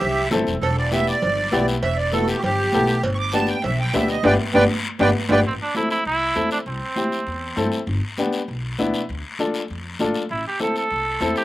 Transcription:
Already playing: G4 E5
0.01 C2, cowbell, high conga, low conga, long guiro
0.31 G1 C4 E4 A4, high conga, low conga, low timbale, short guiro
0.47 E1, short guiro
0.61 E1 A4, cowbell, high conga, long guiro
0.77 D5
0.92 B3 E4 G4 E5, high conga, short guiro
1.07 D5, short guiro
1.22 G1, cowbell, high conga, low conga, long guiro
1.52 B1 B3 E4 G4, high conga, low timbale, short guiro
1.68 short guiro
1.83 E1 E5, cowbell, high conga, long guiro
1.97 D5
2.12 B3 E4 A4, high conga, short guiro
2.23 F#4
2.27 G4, short guiro
2.38 F#4
2.42 G1 G4, cowbell, high conga, low conga, long guiro
2.72 B1 B3 E4 A4, high conga, short guiro
2.87 short guiro
3.03 G1, cowbell, high conga, long guiro
3.14 C#6
3.19 D6
3.32 B3 D4 G4 A5, high conga, short guiro
3.47 G5, short guiro
3.62 B1 E5, cowbell, high conga, low conga, long guiro
3.80 G5
3.94 D2 B3 D4 G4 E5, high conga, low timbale, short guiro
4.08 D#5, short guiro
4.23 G1 B3 D4 G4 B4 D5 G5, high conga, high timbale, long guiro
4.53 G1 B3 D4 G4 B4 D5 G5, high conga, high timbale, long guiro
4.99 G1 B3 D4 G4 B4 D5 G5, high conga, high timbale, long guiro
5.29 G1 B3 D4 G4 B4 D5 G5, high conga, high timbale, long guiro
5.45 C4, long guiro
5.62 D4
5.75 C4 E4 A4, high conga, short guiro
5.90 E4, short guiro
6.05 C2 E4, high conga, long guiro
6.35 E2 C4 E4 A4, high conga, short guiro
6.51 D4, short guiro
6.66 C2 C4, high conga, long guiro
6.96 C4 E4 G4, high conga, short guiro
7.12 short guiro
7.27 E2, high conga, long guiro
7.56 G2 C4 E4 A4, high conga, short guiro
7.72 short guiro
7.86 G1, high conga, long guiro
8.18 B3 D4 G4, high conga, short guiro
8.33 short guiro
8.48 B1, high conga, long guiro
8.78 D2 B3 D4 E4, high conga, short guiro
8.94 short guiro
9.09 D2, high conga, long guiro
9.39 D4 F4 A4, high conga, short guiro
9.54 short guiro
9.68 F2, high conga, long guiro
9.99 A1 D4 F4 A4, high conga, short guiro
10.14 short guiro
10.29 A1 E4, high conga, long guiro
10.48 G4
10.59 C4 E4 A4, high conga, short guiro
10.76 A4, short guiro
10.91 C2, high conga, long guiro
11.20 E2 C4 E4 A4, high conga, short guiro
11.36 G4, short guiro

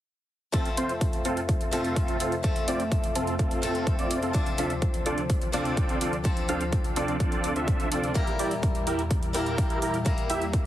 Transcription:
0.52 F2 C3 F3 A3 C4 F4 A4, kick, closed hi-hat
0.65 closed hi-hat
0.77 C4 F4 C5, closed hi-hat
0.89 closed hi-hat
1.01 kick, closed hi-hat
1.13 closed hi-hat
1.25 C4 F4 A4, closed hi-hat
1.37 closed hi-hat
1.49 kick, closed hi-hat
1.61 closed hi-hat
1.71 F3 A3 C4 F4 A4, closed hi-hat
1.85 closed hi-hat
1.96 kick, closed hi-hat
2.08 closed hi-hat
2.20 C4 F4 A4, closed hi-hat
2.32 closed hi-hat
2.43 F3 A3 C4 A4, kick, closed hi-hat
2.56 closed hi-hat
2.68 C4 F4 D5, closed hi-hat
2.80 closed hi-hat
2.92 kick, closed hi-hat
3.04 closed hi-hat
3.15 C4 F4 A4, closed hi-hat
3.27 closed hi-hat
3.39 A4, kick, closed hi-hat
3.51 closed hi-hat
3.62 F3 A3 C4 A4, closed hi-hat
3.75 closed hi-hat
3.87 kick, closed hi-hat
3.99 C4 F4 D5, closed hi-hat
4.11 closed hi-hat
4.22 C4 F4 A4, closed hi-hat
4.33 D2 F3 C4 D4 F4 A4 D5, kick, closed hi-hat
4.46 closed hi-hat
4.58 C4 D4 F4 A4 E5, closed hi-hat
4.70 closed hi-hat
4.82 kick, closed hi-hat
4.94 closed hi-hat
5.06 C4 D4 F4 A4 D5, closed hi-hat
5.18 closed hi-hat
5.30 kick, closed hi-hat
5.42 closed hi-hat
5.52 F3 C4 D4 F4 A4 D5, closed hi-hat
5.65 closed hi-hat
5.77 kick, closed hi-hat
5.89 closed hi-hat
6.01 C4 D4 F4 A4 D5, closed hi-hat
6.13 closed hi-hat
6.24 F3 C4 D4 A4, kick, closed hi-hat
6.37 closed hi-hat
6.49 C4 D4 F4 A4 F5, closed hi-hat
6.61 closed hi-hat
6.73 kick, closed hi-hat
6.84 closed hi-hat
6.96 C4 D4 F4 A4 D5, closed hi-hat
7.08 closed hi-hat
7.20 D4 D5, kick, closed hi-hat
7.32 closed hi-hat
7.44 closed hi-hat
7.56 C4 D4 F4 A4 E5, closed hi-hat
7.68 kick, closed hi-hat
7.80 closed hi-hat
7.92 C4 D4 F4 A4 D5, closed hi-hat
8.04 closed hi-hat
8.14 E2 A#2 G3 A#3 E4 A#4, kick, closed hi-hat
8.27 closed hi-hat
8.39 E4 G4 D5, open hi-hat
8.51 closed hi-hat
8.63 kick, closed hi-hat
8.75 closed hi-hat
8.87 E4 G4 A#4, open hi-hat
8.99 closed hi-hat
9.11 kick, closed hi-hat
9.23 closed hi-hat
9.33 G3 A#3 E4 G4 A#4, open hi-hat
9.46 closed hi-hat
9.58 kick, closed hi-hat
9.70 closed hi-hat
9.82 E4 G4 A#4, open hi-hat
9.94 closed hi-hat
10.05 G3 A#3 E4 A#4, kick, closed hi-hat
10.18 closed hi-hat
10.30 E4 G4 E5, open hi-hat
10.42 closed hi-hat
10.53 kick, closed hi-hat

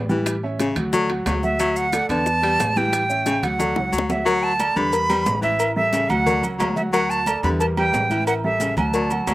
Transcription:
Already playing: A1
0.09 E3 G3 G4 G5, high bongo, high conga, maracas
0.26 high bongo, high timbale, maracas
0.43 C#4 C#5 E5, high conga
0.59 C#3, high bongo, high conga, high timbale, low timbale, maracas
0.76 D2 F#3 F#4 F#5, high bongo, high conga, low conga, high timbale, maracas
0.93 F#3 A3 A4 D5, high bongo, high conga, low conga, maracas
1.10 F#3 F#4 F#5, high bongo, high conga, high timbale
1.26 D2 F#3, high bongo, low bongo, high conga, high timbale, low timbale, maracas
1.43 F#3 F#4 E5 F#5, high bongo, high conga, maracas
1.59 F#3 F#4, high bongo, high timbale, maracas
1.76 F#5, high conga, maracas
1.92 A3 A4 D5, high bongo, high conga, high timbale, low timbale, maracas
2.09 E2 D3 B3 B4 D5 A5, high bongo, high timbale, maracas
2.26 high bongo, high conga, maracas
2.43 G3 B3 B4 D5, high bongo, high conga, high timbale
2.59 A1, high bongo, low bongo, high conga, high timbale, low timbale, maracas
2.76 E3 G3 G4 G5, high bongo, high conga, maracas
2.93 high bongo, high conga, high timbale, maracas
3.09 C#4 C#5 E5, high conga, maracas
3.26 C#3, high bongo, high conga, high timbale, low timbale, maracas
3.43 D2 F#3 F#4 F#5, high bongo, high conga, low conga, high timbale, maracas
3.59 F#3 A3 A4 D5, high bongo, high conga, low conga, maracas
3.76 C#2 F#3 F#4 F#5, high bongo, high timbale
3.92 D2 F#3, high conga, maracas
3.98 low bongo
4.09 F#3 F#4 E5 F#5, low bongo, high conga, low timbale, maracas
4.26 F#3 F#4 F#5, cowbell, low agogo, maracas
4.43 A5, high conga
4.60 A3 A4 D5, cowbell, high conga, low timbale, low agogo, maracas
4.76 E2 D3 G3 G4 B4 B5, cowbell, maracas
4.93 cowbell, high conga, low agogo, maracas
5.10 G3 G4 B4, low agogo, maracas
5.26 A1, cowbell, high conga, low timbale, maracas
5.42 E3 E4 E5, high conga, low agogo, maracas
5.60 cowbell, low agogo, maracas
5.76 G3 G4 A4 E5, high conga
5.93 C#3, cowbell, high conga, low timbale, low agogo, maracas
6.09 D2 F#3 F#4 F#5, high conga, low conga, low agogo, maracas
6.26 F#3 A3 A4 D5, cowbell, high conga, low conga, maracas
6.43 C#2 F#3 F#4 F#5, high conga, low agogo, maracas
6.59 D2 F#3, cowbell, high conga, low timbale, low agogo, maracas
6.76 F#3 F#4 E5 F#5, cowbell, high conga, maracas
6.92 F#3 F#4 F#5, cowbell, high conga, low agogo, maracas
7.10 A5, high conga, maracas
7.26 A3 A4 D5, cowbell, high conga, low timbale, low agogo, maracas
7.43 E2 D3 G3 G4 B4 B5, cowbell, maracas
7.60 A5, cowbell, high conga, low agogo, maracas
7.76 G3 G4 B4 G5, high conga, low agogo
7.93 A1, cowbell, high conga, low timbale, maracas
8.10 E3 E4 E5, high conga, low agogo, maracas
8.27 F#5, cowbell, high conga, low agogo, maracas
8.44 G3 G4 A4 E5, high conga
8.60 C#3, cowbell, high conga, low timbale, low agogo, maracas
8.77 D2 F#3 F#4 F#5 A5, high conga, low conga, low agogo, maracas
8.94 F#3 A3 A4 D5, cowbell, high conga, maracas
9.10 F#3 F#4 F#5, high conga, low agogo, maracas
9.27 D2 F#3, cowbell, high conga, low timbale, low agogo, maracas

